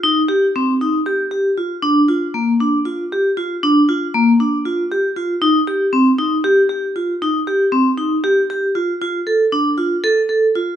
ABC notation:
X:1
M:7/8
L:1/8
Q:1/4=117
K:Bb
V:1 name="Vibraphone"
E G C E G G F | D F B, D F G F | D F B, D F G F | E G C E G G F |
E G C E G G F | F A D F A A F |]